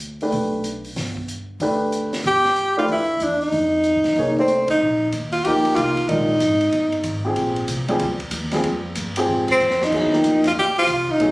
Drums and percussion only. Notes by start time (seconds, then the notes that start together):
0.21 open hi-hat
0.32 open hi-hat
0.64 closed hi-hat
0.85 open hi-hat
0.96 snare, open hi-hat
1.17 kick
1.28 closed hi-hat
1.60 open hi-hat
1.92 closed hi-hat
2.13 snare, open hi-hat
2.24 open hi-hat
2.45 snare
2.56 closed hi-hat
2.88 open hi-hat
3.20 closed hi-hat
3.41 open hi-hat
3.52 open hi-hat
3.84 closed hi-hat
4.04 snare, open hi-hat
4.16 open hi-hat
4.37 kick
4.48 closed hi-hat
4.68 kick, ride
5.12 hi-hat pedal, ride
5.32 ride
5.45 ride
5.65 ride
5.76 hi-hat pedal, ride
5.97 kick, ride
6.09 ride
6.40 hi-hat pedal, ride
6.61 ride
6.72 ride
6.92 ride
7.03 hi-hat pedal, ride
7.36 ride
7.56 ride
7.68 hi-hat pedal, ride
7.88 ride
7.99 ride
8.20 kick, ride
8.31 hi-hat pedal, ride
8.51 snare, ride
8.64 ride
8.95 hi-hat pedal, ride
9.16 ride
9.48 kick, crash
9.60 hi-hat pedal
9.71 snare
9.82 snare
9.92 kick, crash
10.13 snare
10.24 hi-hat pedal, ride
10.44 snare, ride
10.87 hi-hat pedal, ride
11.08 kick
11.20 ride